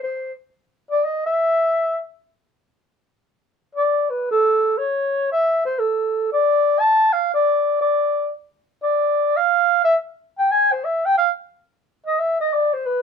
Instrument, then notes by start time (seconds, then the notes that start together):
clarinet
0.03 C5
0.91 D5
1.04 D#5
1.26 E5
3.75 D5
4.10 B4
4.31 A4
4.78 C#5
5.32 E5
5.65 C5
5.79 A4
6.32 D5
6.79 A5
7.13 F5
7.34 D5
7.81 D5
8.83 D5
9.37 F5
9.84 E5
10.39 G5
10.51 G#5
10.72 C5
10.84 E5
11.05 G5
11.17 F5
12.06 D#5
12.19 E5
12.40 D#5
12.53 D5
12.73 C5
12.86 B4